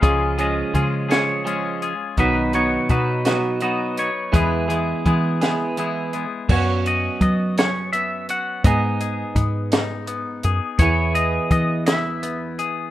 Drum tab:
CC |------|------|------|x-----|
HH |xxxxxx|xxxxxx|xxxxxx|-xxxxx|
SD |---o--|---o--|---o--|---o--|
BD |o-o---|o-o---|o-o---|o-o---|

CC |------|------|
HH |xxxxxx|xxxxxx|
SD |---o--|---o--|
BD |o-o---|o-o---|